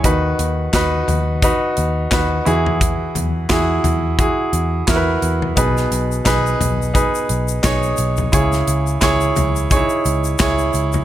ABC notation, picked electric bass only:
X:1
M:4/4
L:1/16
Q:"Swing 16ths" 1/4=87
K:B
V:1 name="Picked electric bass" clef=bass
D,,2 D,,2 D,,2 D,,3 z D,,2 D,,2 E,,2- | E,,2 E,,2 E,,2 E,,3 z E,,2 E,,2 E,,2 | B,,,2 B,,,2 B,,,2 B,,,3 z B,,,2 B,,,2 B,,,2 | C,,2 C,,2 C,,2 C,,3 z C,,2 C,,2 C,,2 |]